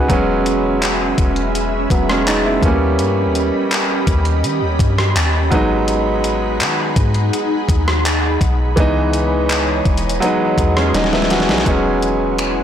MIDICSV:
0, 0, Header, 1, 5, 480
1, 0, Start_track
1, 0, Key_signature, 4, "major"
1, 0, Tempo, 722892
1, 64, Time_signature, 4, 2, 24, 8
1, 8389, End_track
2, 0, Start_track
2, 0, Title_t, "Ambient pad"
2, 0, Program_c, 0, 92
2, 0, Note_on_c, 0, 61, 76
2, 0, Note_on_c, 0, 83, 86
2, 62, Note_on_c, 0, 76, 74
2, 63, Note_on_c, 0, 68, 67
2, 1726, Note_off_c, 0, 68, 0
2, 1726, Note_off_c, 0, 76, 0
2, 1742, Note_on_c, 0, 75, 73
2, 1743, Note_on_c, 0, 67, 75
2, 3637, Note_off_c, 0, 61, 0
2, 3644, Note_off_c, 0, 67, 0
2, 3644, Note_off_c, 0, 75, 0
2, 3663, Note_on_c, 0, 63, 83
2, 3663, Note_on_c, 0, 68, 74
2, 3663, Note_on_c, 0, 78, 72
2, 5802, Note_off_c, 0, 63, 0
2, 5802, Note_off_c, 0, 68, 0
2, 5802, Note_off_c, 0, 78, 0
2, 5821, Note_on_c, 0, 52, 73
2, 5821, Note_on_c, 0, 73, 70
2, 5821, Note_on_c, 0, 75, 73
2, 6756, Note_off_c, 0, 83, 0
2, 6773, Note_off_c, 0, 73, 0
2, 6781, Note_on_c, 0, 80, 87
2, 6782, Note_on_c, 0, 78, 73
2, 7723, Note_off_c, 0, 52, 0
2, 7723, Note_off_c, 0, 75, 0
2, 7732, Note_off_c, 0, 80, 0
2, 7733, Note_off_c, 0, 78, 0
2, 7742, Note_on_c, 0, 64, 74
2, 7742, Note_on_c, 0, 73, 68
2, 7742, Note_on_c, 0, 80, 83
2, 7743, Note_on_c, 0, 78, 69
2, 8389, Note_off_c, 0, 64, 0
2, 8389, Note_off_c, 0, 73, 0
2, 8389, Note_off_c, 0, 78, 0
2, 8389, Note_off_c, 0, 80, 0
2, 8389, End_track
3, 0, Start_track
3, 0, Title_t, "Grand piano"
3, 0, Program_c, 1, 0
3, 0, Control_c, 1, 64, 127
3, 0, Note_on_c, 1, 61, 57
3, 0, Note_on_c, 1, 63, 58
3, 0, Note_on_c, 1, 66, 56
3, 0, Note_on_c, 1, 68, 67
3, 0, Note_on_c, 1, 71, 62
3, 55, Note_on_c, 1, 54, 79
3, 65, Note_on_c, 1, 56, 70
3, 73, Control_c, 1, 64, 0
3, 74, Note_off_c, 1, 61, 0
3, 74, Note_off_c, 1, 63, 0
3, 74, Note_on_c, 1, 59, 70
3, 80, Note_off_c, 1, 68, 0
3, 82, Note_on_c, 1, 61, 83
3, 174, Note_off_c, 1, 71, 0
3, 176, Note_off_c, 1, 66, 0
3, 196, Control_c, 1, 64, 127
3, 1235, Note_off_c, 1, 54, 0
3, 1240, Note_off_c, 1, 56, 0
3, 1245, Note_off_c, 1, 59, 0
3, 1249, Note_off_c, 1, 61, 0
3, 1268, Note_on_c, 1, 59, 60
3, 1273, Note_on_c, 1, 54, 50
3, 1380, Note_off_c, 1, 59, 0
3, 1382, Note_off_c, 1, 54, 0
3, 1388, Note_on_c, 1, 61, 69
3, 1392, Note_on_c, 1, 56, 64
3, 1500, Note_off_c, 1, 56, 0
3, 1500, Note_off_c, 1, 61, 0
3, 1507, Note_on_c, 1, 63, 72
3, 1510, Note_on_c, 1, 56, 59
3, 1619, Note_off_c, 1, 63, 0
3, 1621, Note_off_c, 1, 56, 0
3, 1628, Note_on_c, 1, 64, 66
3, 1631, Note_on_c, 1, 59, 58
3, 1734, Note_on_c, 1, 53, 60
3, 1742, Note_off_c, 1, 59, 0
3, 1743, Note_on_c, 1, 58, 66
3, 1752, Control_c, 1, 64, 0
3, 1752, Note_on_c, 1, 59, 68
3, 1760, Note_on_c, 1, 61, 82
3, 1777, Note_on_c, 1, 55, 77
3, 1782, Note_off_c, 1, 53, 0
3, 1854, Note_off_c, 1, 64, 0
3, 1862, Control_c, 1, 64, 127
3, 3637, Note_off_c, 1, 58, 0
3, 3641, Note_off_c, 1, 59, 0
3, 3645, Note_off_c, 1, 61, 0
3, 3654, Note_off_c, 1, 55, 0
3, 3654, Note_on_c, 1, 54, 78
3, 3663, Note_on_c, 1, 56, 73
3, 3671, Control_c, 1, 64, 0
3, 3672, Note_on_c, 1, 59, 72
3, 3681, Note_on_c, 1, 63, 85
3, 3808, Control_c, 1, 64, 127
3, 5552, Note_off_c, 1, 54, 0
3, 5557, Note_off_c, 1, 56, 0
3, 5561, Note_off_c, 1, 59, 0
3, 5566, Note_off_c, 1, 63, 0
3, 5816, Note_on_c, 1, 52, 79
3, 5824, Note_on_c, 1, 56, 70
3, 5830, Control_c, 1, 64, 0
3, 5834, Note_on_c, 1, 59, 75
3, 5842, Note_on_c, 1, 63, 92
3, 5939, Control_c, 1, 64, 127
3, 6761, Note_off_c, 1, 52, 0
3, 6765, Note_off_c, 1, 56, 0
3, 6769, Note_off_c, 1, 59, 0
3, 6774, Note_off_c, 1, 63, 0
3, 6775, Note_on_c, 1, 54, 83
3, 6783, Note_on_c, 1, 56, 73
3, 6792, Note_on_c, 1, 59, 77
3, 6793, Control_c, 1, 64, 0
3, 6801, Note_on_c, 1, 63, 84
3, 6920, Control_c, 1, 64, 127
3, 7018, Note_off_c, 1, 56, 0
3, 7023, Note_off_c, 1, 59, 0
3, 7028, Note_off_c, 1, 63, 0
3, 7148, Note_on_c, 1, 61, 67
3, 7152, Note_on_c, 1, 56, 55
3, 7260, Note_off_c, 1, 61, 0
3, 7261, Note_off_c, 1, 56, 0
3, 7267, Note_on_c, 1, 63, 69
3, 7271, Note_on_c, 1, 56, 57
3, 7379, Note_off_c, 1, 63, 0
3, 7381, Note_off_c, 1, 56, 0
3, 7388, Note_on_c, 1, 64, 74
3, 7392, Note_on_c, 1, 59, 63
3, 7500, Note_off_c, 1, 64, 0
3, 7502, Note_off_c, 1, 59, 0
3, 7508, Note_on_c, 1, 66, 71
3, 7512, Note_on_c, 1, 61, 56
3, 7620, Note_off_c, 1, 66, 0
3, 7622, Note_off_c, 1, 61, 0
3, 7630, Note_on_c, 1, 68, 59
3, 7632, Note_on_c, 1, 63, 54
3, 7720, Note_off_c, 1, 54, 0
3, 7736, Note_on_c, 1, 54, 73
3, 7744, Note_on_c, 1, 56, 69
3, 7753, Note_on_c, 1, 59, 65
3, 7754, Control_c, 1, 64, 0
3, 7762, Note_on_c, 1, 61, 81
3, 7855, Note_off_c, 1, 68, 0
3, 7856, Note_off_c, 1, 63, 0
3, 7877, Control_c, 1, 64, 127
3, 8389, Note_off_c, 1, 54, 0
3, 8389, Note_off_c, 1, 56, 0
3, 8389, Note_off_c, 1, 59, 0
3, 8389, Note_off_c, 1, 61, 0
3, 8389, End_track
4, 0, Start_track
4, 0, Title_t, "808-style bass"
4, 0, Program_c, 2, 38
4, 63, Note_on_c, 2, 28, 105
4, 757, Note_off_c, 2, 28, 0
4, 783, Note_on_c, 2, 28, 112
4, 1244, Note_off_c, 2, 28, 0
4, 1264, Note_on_c, 2, 28, 110
4, 1724, Note_off_c, 2, 28, 0
4, 1744, Note_on_c, 2, 39, 109
4, 1983, Note_on_c, 2, 43, 93
4, 1993, Note_off_c, 2, 39, 0
4, 2164, Note_on_c, 2, 39, 91
4, 2174, Note_off_c, 2, 43, 0
4, 2334, Note_off_c, 2, 39, 0
4, 2703, Note_on_c, 2, 39, 117
4, 2942, Note_on_c, 2, 51, 96
4, 2952, Note_off_c, 2, 39, 0
4, 3063, Note_on_c, 2, 39, 95
4, 3073, Note_off_c, 2, 51, 0
4, 3177, Note_off_c, 2, 39, 0
4, 3183, Note_on_c, 2, 43, 105
4, 3413, Note_off_c, 2, 43, 0
4, 3422, Note_on_c, 2, 39, 101
4, 3653, Note_off_c, 2, 39, 0
4, 3663, Note_on_c, 2, 32, 100
4, 4382, Note_on_c, 2, 51, 96
4, 4392, Note_off_c, 2, 32, 0
4, 4611, Note_off_c, 2, 51, 0
4, 4623, Note_on_c, 2, 44, 110
4, 4854, Note_off_c, 2, 44, 0
4, 5104, Note_on_c, 2, 39, 101
4, 5564, Note_off_c, 2, 39, 0
4, 5584, Note_on_c, 2, 35, 110
4, 5814, Note_off_c, 2, 35, 0
4, 5823, Note_on_c, 2, 37, 107
4, 6517, Note_off_c, 2, 37, 0
4, 6543, Note_on_c, 2, 28, 105
4, 6774, Note_off_c, 2, 28, 0
4, 7023, Note_on_c, 2, 40, 102
4, 7254, Note_off_c, 2, 40, 0
4, 7264, Note_on_c, 2, 27, 100
4, 7624, Note_on_c, 2, 35, 99
4, 7634, Note_off_c, 2, 27, 0
4, 7738, Note_off_c, 2, 35, 0
4, 7743, Note_on_c, 2, 28, 104
4, 8389, Note_off_c, 2, 28, 0
4, 8389, End_track
5, 0, Start_track
5, 0, Title_t, "Drums"
5, 64, Note_on_c, 9, 36, 111
5, 65, Note_on_c, 9, 42, 77
5, 130, Note_off_c, 9, 36, 0
5, 131, Note_off_c, 9, 42, 0
5, 306, Note_on_c, 9, 42, 75
5, 372, Note_off_c, 9, 42, 0
5, 545, Note_on_c, 9, 42, 80
5, 548, Note_on_c, 9, 39, 107
5, 611, Note_off_c, 9, 42, 0
5, 615, Note_off_c, 9, 39, 0
5, 783, Note_on_c, 9, 36, 96
5, 783, Note_on_c, 9, 42, 75
5, 850, Note_off_c, 9, 36, 0
5, 850, Note_off_c, 9, 42, 0
5, 904, Note_on_c, 9, 42, 42
5, 971, Note_off_c, 9, 42, 0
5, 1030, Note_on_c, 9, 42, 69
5, 1097, Note_off_c, 9, 42, 0
5, 1264, Note_on_c, 9, 36, 97
5, 1269, Note_on_c, 9, 42, 66
5, 1330, Note_off_c, 9, 36, 0
5, 1335, Note_off_c, 9, 42, 0
5, 1391, Note_on_c, 9, 37, 94
5, 1457, Note_off_c, 9, 37, 0
5, 1508, Note_on_c, 9, 42, 84
5, 1512, Note_on_c, 9, 39, 115
5, 1574, Note_off_c, 9, 42, 0
5, 1579, Note_off_c, 9, 39, 0
5, 1744, Note_on_c, 9, 36, 111
5, 1746, Note_on_c, 9, 42, 66
5, 1810, Note_off_c, 9, 36, 0
5, 1813, Note_off_c, 9, 42, 0
5, 1984, Note_on_c, 9, 42, 75
5, 2051, Note_off_c, 9, 42, 0
5, 2226, Note_on_c, 9, 42, 69
5, 2292, Note_off_c, 9, 42, 0
5, 2465, Note_on_c, 9, 42, 73
5, 2469, Note_on_c, 9, 39, 109
5, 2531, Note_off_c, 9, 42, 0
5, 2535, Note_off_c, 9, 39, 0
5, 2703, Note_on_c, 9, 36, 103
5, 2704, Note_on_c, 9, 42, 75
5, 2770, Note_off_c, 9, 36, 0
5, 2770, Note_off_c, 9, 42, 0
5, 2823, Note_on_c, 9, 42, 42
5, 2890, Note_off_c, 9, 42, 0
5, 2949, Note_on_c, 9, 42, 73
5, 3015, Note_off_c, 9, 42, 0
5, 3183, Note_on_c, 9, 36, 96
5, 3187, Note_on_c, 9, 42, 70
5, 3249, Note_off_c, 9, 36, 0
5, 3253, Note_off_c, 9, 42, 0
5, 3310, Note_on_c, 9, 37, 94
5, 3376, Note_off_c, 9, 37, 0
5, 3427, Note_on_c, 9, 42, 82
5, 3431, Note_on_c, 9, 39, 115
5, 3493, Note_off_c, 9, 42, 0
5, 3497, Note_off_c, 9, 39, 0
5, 3663, Note_on_c, 9, 36, 100
5, 3665, Note_on_c, 9, 42, 63
5, 3729, Note_off_c, 9, 36, 0
5, 3731, Note_off_c, 9, 42, 0
5, 3903, Note_on_c, 9, 42, 78
5, 3970, Note_off_c, 9, 42, 0
5, 4144, Note_on_c, 9, 42, 71
5, 4210, Note_off_c, 9, 42, 0
5, 4384, Note_on_c, 9, 42, 81
5, 4388, Note_on_c, 9, 39, 115
5, 4450, Note_off_c, 9, 42, 0
5, 4454, Note_off_c, 9, 39, 0
5, 4623, Note_on_c, 9, 36, 100
5, 4623, Note_on_c, 9, 42, 75
5, 4689, Note_off_c, 9, 42, 0
5, 4690, Note_off_c, 9, 36, 0
5, 4744, Note_on_c, 9, 42, 42
5, 4810, Note_off_c, 9, 42, 0
5, 4869, Note_on_c, 9, 42, 75
5, 4936, Note_off_c, 9, 42, 0
5, 5104, Note_on_c, 9, 36, 95
5, 5109, Note_on_c, 9, 42, 73
5, 5170, Note_off_c, 9, 36, 0
5, 5175, Note_off_c, 9, 42, 0
5, 5231, Note_on_c, 9, 37, 91
5, 5297, Note_off_c, 9, 37, 0
5, 5348, Note_on_c, 9, 42, 87
5, 5353, Note_on_c, 9, 39, 107
5, 5415, Note_off_c, 9, 42, 0
5, 5419, Note_off_c, 9, 39, 0
5, 5584, Note_on_c, 9, 36, 89
5, 5586, Note_on_c, 9, 42, 65
5, 5650, Note_off_c, 9, 36, 0
5, 5652, Note_off_c, 9, 42, 0
5, 5824, Note_on_c, 9, 36, 117
5, 5824, Note_on_c, 9, 42, 72
5, 5890, Note_off_c, 9, 36, 0
5, 5891, Note_off_c, 9, 42, 0
5, 6065, Note_on_c, 9, 42, 69
5, 6132, Note_off_c, 9, 42, 0
5, 6304, Note_on_c, 9, 42, 78
5, 6308, Note_on_c, 9, 39, 112
5, 6371, Note_off_c, 9, 42, 0
5, 6375, Note_off_c, 9, 39, 0
5, 6543, Note_on_c, 9, 36, 99
5, 6544, Note_on_c, 9, 42, 46
5, 6610, Note_off_c, 9, 36, 0
5, 6610, Note_off_c, 9, 42, 0
5, 6623, Note_on_c, 9, 42, 62
5, 6690, Note_off_c, 9, 42, 0
5, 6703, Note_on_c, 9, 42, 77
5, 6769, Note_off_c, 9, 42, 0
5, 6789, Note_on_c, 9, 42, 71
5, 6855, Note_off_c, 9, 42, 0
5, 7023, Note_on_c, 9, 36, 97
5, 7027, Note_on_c, 9, 42, 72
5, 7090, Note_off_c, 9, 36, 0
5, 7094, Note_off_c, 9, 42, 0
5, 7150, Note_on_c, 9, 37, 97
5, 7216, Note_off_c, 9, 37, 0
5, 7267, Note_on_c, 9, 42, 84
5, 7270, Note_on_c, 9, 38, 62
5, 7330, Note_off_c, 9, 38, 0
5, 7330, Note_on_c, 9, 38, 61
5, 7334, Note_off_c, 9, 42, 0
5, 7390, Note_off_c, 9, 38, 0
5, 7390, Note_on_c, 9, 38, 75
5, 7451, Note_off_c, 9, 38, 0
5, 7451, Note_on_c, 9, 38, 69
5, 7506, Note_on_c, 9, 42, 68
5, 7510, Note_off_c, 9, 38, 0
5, 7510, Note_on_c, 9, 38, 90
5, 7570, Note_off_c, 9, 38, 0
5, 7570, Note_on_c, 9, 38, 80
5, 7572, Note_off_c, 9, 42, 0
5, 7630, Note_off_c, 9, 38, 0
5, 7630, Note_on_c, 9, 38, 104
5, 7689, Note_off_c, 9, 38, 0
5, 7689, Note_on_c, 9, 38, 96
5, 7743, Note_on_c, 9, 36, 107
5, 7743, Note_on_c, 9, 42, 72
5, 7756, Note_off_c, 9, 38, 0
5, 7810, Note_off_c, 9, 36, 0
5, 7810, Note_off_c, 9, 42, 0
5, 7984, Note_on_c, 9, 42, 68
5, 8051, Note_off_c, 9, 42, 0
5, 8224, Note_on_c, 9, 42, 73
5, 8228, Note_on_c, 9, 26, 101
5, 8290, Note_off_c, 9, 42, 0
5, 8294, Note_off_c, 9, 26, 0
5, 8389, End_track
0, 0, End_of_file